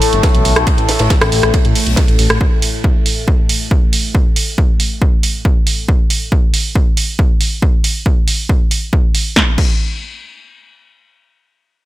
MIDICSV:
0, 0, Header, 1, 4, 480
1, 0, Start_track
1, 0, Tempo, 434783
1, 736, Time_signature, 4, 2, 24, 8
1, 13083, End_track
2, 0, Start_track
2, 0, Title_t, "Synth drone"
2, 0, Program_c, 0, 95
2, 0, Note_on_c, 0, 45, 79
2, 0, Note_on_c, 0, 57, 81
2, 6546, Note_off_c, 0, 45, 0
2, 6546, Note_off_c, 0, 57, 0
2, 13083, End_track
3, 0, Start_track
3, 0, Title_t, "Detuned saw bass"
3, 0, Program_c, 1, 39
3, 141, Note_on_c, 1, 31, 83
3, 233, Note_off_c, 1, 31, 0
3, 380, Note_on_c, 1, 35, 75
3, 472, Note_off_c, 1, 35, 0
3, 498, Note_on_c, 1, 35, 100
3, 594, Note_off_c, 1, 35, 0
3, 620, Note_on_c, 1, 35, 82
3, 712, Note_off_c, 1, 35, 0
3, 861, Note_on_c, 1, 33, 76
3, 953, Note_off_c, 1, 33, 0
3, 1100, Note_on_c, 1, 33, 84
3, 1192, Note_off_c, 1, 33, 0
3, 1340, Note_on_c, 1, 33, 75
3, 1432, Note_off_c, 1, 33, 0
3, 1458, Note_on_c, 1, 33, 92
3, 1554, Note_off_c, 1, 33, 0
3, 1581, Note_on_c, 1, 33, 84
3, 1672, Note_off_c, 1, 33, 0
3, 1819, Note_on_c, 1, 45, 78
3, 1912, Note_off_c, 1, 45, 0
3, 2059, Note_on_c, 1, 35, 83
3, 2152, Note_off_c, 1, 35, 0
3, 2299, Note_on_c, 1, 33, 76
3, 2392, Note_off_c, 1, 33, 0
3, 2417, Note_on_c, 1, 33, 98
3, 2513, Note_off_c, 1, 33, 0
3, 2539, Note_on_c, 1, 33, 80
3, 2632, Note_off_c, 1, 33, 0
3, 13083, End_track
4, 0, Start_track
4, 0, Title_t, "Drums"
4, 18, Note_on_c, 9, 46, 111
4, 19, Note_on_c, 9, 51, 65
4, 129, Note_off_c, 9, 46, 0
4, 129, Note_off_c, 9, 51, 0
4, 141, Note_on_c, 9, 42, 54
4, 251, Note_off_c, 9, 42, 0
4, 256, Note_on_c, 9, 51, 89
4, 258, Note_on_c, 9, 36, 122
4, 259, Note_on_c, 9, 42, 92
4, 263, Note_on_c, 9, 38, 109
4, 366, Note_off_c, 9, 51, 0
4, 368, Note_off_c, 9, 36, 0
4, 369, Note_off_c, 9, 42, 0
4, 374, Note_off_c, 9, 38, 0
4, 382, Note_on_c, 9, 42, 53
4, 492, Note_off_c, 9, 42, 0
4, 495, Note_on_c, 9, 51, 59
4, 499, Note_on_c, 9, 46, 111
4, 605, Note_off_c, 9, 51, 0
4, 609, Note_off_c, 9, 46, 0
4, 621, Note_on_c, 9, 37, 82
4, 621, Note_on_c, 9, 42, 54
4, 623, Note_on_c, 9, 51, 42
4, 732, Note_off_c, 9, 37, 0
4, 732, Note_off_c, 9, 42, 0
4, 733, Note_off_c, 9, 51, 0
4, 737, Note_on_c, 9, 36, 122
4, 738, Note_on_c, 9, 42, 89
4, 745, Note_on_c, 9, 51, 84
4, 848, Note_off_c, 9, 36, 0
4, 849, Note_off_c, 9, 42, 0
4, 856, Note_off_c, 9, 51, 0
4, 861, Note_on_c, 9, 42, 53
4, 971, Note_off_c, 9, 42, 0
4, 975, Note_on_c, 9, 51, 70
4, 978, Note_on_c, 9, 46, 109
4, 981, Note_on_c, 9, 38, 103
4, 1085, Note_off_c, 9, 51, 0
4, 1089, Note_off_c, 9, 46, 0
4, 1092, Note_off_c, 9, 38, 0
4, 1093, Note_on_c, 9, 51, 76
4, 1100, Note_on_c, 9, 38, 100
4, 1101, Note_on_c, 9, 42, 51
4, 1203, Note_off_c, 9, 51, 0
4, 1211, Note_off_c, 9, 38, 0
4, 1211, Note_off_c, 9, 42, 0
4, 1215, Note_on_c, 9, 51, 75
4, 1217, Note_on_c, 9, 36, 121
4, 1218, Note_on_c, 9, 38, 98
4, 1218, Note_on_c, 9, 42, 85
4, 1325, Note_off_c, 9, 51, 0
4, 1328, Note_off_c, 9, 36, 0
4, 1328, Note_off_c, 9, 38, 0
4, 1329, Note_off_c, 9, 42, 0
4, 1341, Note_on_c, 9, 37, 96
4, 1341, Note_on_c, 9, 42, 52
4, 1341, Note_on_c, 9, 51, 77
4, 1343, Note_on_c, 9, 38, 92
4, 1451, Note_off_c, 9, 37, 0
4, 1451, Note_off_c, 9, 42, 0
4, 1451, Note_off_c, 9, 51, 0
4, 1454, Note_off_c, 9, 38, 0
4, 1458, Note_on_c, 9, 46, 109
4, 1460, Note_on_c, 9, 51, 62
4, 1569, Note_off_c, 9, 46, 0
4, 1570, Note_off_c, 9, 51, 0
4, 1581, Note_on_c, 9, 37, 83
4, 1581, Note_on_c, 9, 42, 50
4, 1692, Note_off_c, 9, 37, 0
4, 1692, Note_off_c, 9, 42, 0
4, 1697, Note_on_c, 9, 36, 123
4, 1698, Note_on_c, 9, 42, 86
4, 1698, Note_on_c, 9, 51, 83
4, 1808, Note_off_c, 9, 36, 0
4, 1808, Note_off_c, 9, 42, 0
4, 1808, Note_off_c, 9, 51, 0
4, 1820, Note_on_c, 9, 42, 50
4, 1930, Note_off_c, 9, 42, 0
4, 1937, Note_on_c, 9, 46, 104
4, 2047, Note_off_c, 9, 46, 0
4, 2060, Note_on_c, 9, 42, 52
4, 2168, Note_on_c, 9, 38, 115
4, 2170, Note_off_c, 9, 42, 0
4, 2174, Note_on_c, 9, 51, 93
4, 2177, Note_on_c, 9, 36, 125
4, 2177, Note_on_c, 9, 42, 89
4, 2278, Note_off_c, 9, 38, 0
4, 2284, Note_off_c, 9, 51, 0
4, 2287, Note_off_c, 9, 42, 0
4, 2288, Note_off_c, 9, 36, 0
4, 2299, Note_on_c, 9, 42, 50
4, 2410, Note_off_c, 9, 42, 0
4, 2414, Note_on_c, 9, 51, 66
4, 2416, Note_on_c, 9, 46, 108
4, 2524, Note_off_c, 9, 51, 0
4, 2527, Note_off_c, 9, 46, 0
4, 2540, Note_on_c, 9, 37, 85
4, 2540, Note_on_c, 9, 42, 52
4, 2650, Note_off_c, 9, 37, 0
4, 2650, Note_off_c, 9, 42, 0
4, 2658, Note_on_c, 9, 36, 117
4, 2768, Note_off_c, 9, 36, 0
4, 2896, Note_on_c, 9, 46, 107
4, 3007, Note_off_c, 9, 46, 0
4, 3137, Note_on_c, 9, 36, 114
4, 3248, Note_off_c, 9, 36, 0
4, 3376, Note_on_c, 9, 46, 103
4, 3487, Note_off_c, 9, 46, 0
4, 3617, Note_on_c, 9, 36, 116
4, 3728, Note_off_c, 9, 36, 0
4, 3857, Note_on_c, 9, 46, 105
4, 3967, Note_off_c, 9, 46, 0
4, 4097, Note_on_c, 9, 36, 118
4, 4208, Note_off_c, 9, 36, 0
4, 4337, Note_on_c, 9, 46, 104
4, 4447, Note_off_c, 9, 46, 0
4, 4577, Note_on_c, 9, 36, 111
4, 4688, Note_off_c, 9, 36, 0
4, 4816, Note_on_c, 9, 46, 102
4, 4926, Note_off_c, 9, 46, 0
4, 5057, Note_on_c, 9, 36, 108
4, 5167, Note_off_c, 9, 36, 0
4, 5297, Note_on_c, 9, 46, 99
4, 5407, Note_off_c, 9, 46, 0
4, 5537, Note_on_c, 9, 36, 111
4, 5648, Note_off_c, 9, 36, 0
4, 5777, Note_on_c, 9, 46, 98
4, 5887, Note_off_c, 9, 46, 0
4, 6017, Note_on_c, 9, 36, 111
4, 6128, Note_off_c, 9, 36, 0
4, 6257, Note_on_c, 9, 46, 98
4, 6367, Note_off_c, 9, 46, 0
4, 6497, Note_on_c, 9, 36, 107
4, 6607, Note_off_c, 9, 36, 0
4, 6737, Note_on_c, 9, 46, 100
4, 6847, Note_off_c, 9, 46, 0
4, 6977, Note_on_c, 9, 36, 108
4, 7087, Note_off_c, 9, 36, 0
4, 7217, Note_on_c, 9, 46, 99
4, 7327, Note_off_c, 9, 46, 0
4, 7457, Note_on_c, 9, 36, 111
4, 7567, Note_off_c, 9, 36, 0
4, 7697, Note_on_c, 9, 46, 97
4, 7807, Note_off_c, 9, 46, 0
4, 7937, Note_on_c, 9, 36, 115
4, 8047, Note_off_c, 9, 36, 0
4, 8176, Note_on_c, 9, 46, 96
4, 8287, Note_off_c, 9, 46, 0
4, 8417, Note_on_c, 9, 36, 114
4, 8527, Note_off_c, 9, 36, 0
4, 8657, Note_on_c, 9, 46, 101
4, 8767, Note_off_c, 9, 46, 0
4, 8897, Note_on_c, 9, 36, 105
4, 9007, Note_off_c, 9, 36, 0
4, 9137, Note_on_c, 9, 46, 102
4, 9247, Note_off_c, 9, 46, 0
4, 9377, Note_on_c, 9, 36, 110
4, 9487, Note_off_c, 9, 36, 0
4, 9617, Note_on_c, 9, 46, 96
4, 9727, Note_off_c, 9, 46, 0
4, 9857, Note_on_c, 9, 36, 113
4, 9967, Note_off_c, 9, 36, 0
4, 10097, Note_on_c, 9, 46, 100
4, 10208, Note_off_c, 9, 46, 0
4, 10336, Note_on_c, 9, 38, 84
4, 10337, Note_on_c, 9, 36, 110
4, 10447, Note_off_c, 9, 36, 0
4, 10447, Note_off_c, 9, 38, 0
4, 10576, Note_on_c, 9, 49, 81
4, 10577, Note_on_c, 9, 36, 110
4, 10686, Note_off_c, 9, 49, 0
4, 10687, Note_off_c, 9, 36, 0
4, 13083, End_track
0, 0, End_of_file